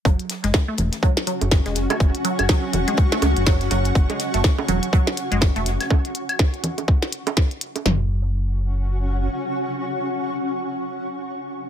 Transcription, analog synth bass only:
0.05 F#1
0.44 F#1
0.78 E1
1.41 F#1
1.66 E1
1.76 F#1
2.00 F#1
2.39 F#1
2.73 E1
3.22 C#2
3.37 F#1
3.71 F#1
3.95 F#1
4.34 F#1
4.68 E1
5.32 F#1
5.56 E1
5.66 F#1
7.86 F#1

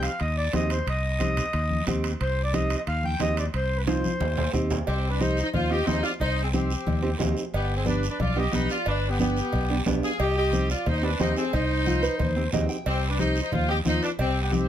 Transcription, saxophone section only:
4.87 C4
5.10 D4
5.20 D#4
5.43 D#4
5.54 F4
5.71 G4
5.87 D#4
6.03 F4
6.21 D#4
6.43 C4
6.54 C4
7.55 B3
7.77 C4
7.87 D4
8.10 D4
8.20 F4
8.38 G4
8.53 D#4
8.71 F4
8.87 D4
9.10 B3
9.21 B3
10.04 G#4
10.21 G4
10.38 G4
10.70 F4
10.88 D#4
11.04 D4
11.21 D#4
11.37 C4
11.54 D#4
12.87 C4
13.09 D4
13.19 D#4
13.42 D#4
13.53 F4
13.69 G4
13.87 D#4
14.03 D4
14.20 C4
14.42 B3
14.54 C4

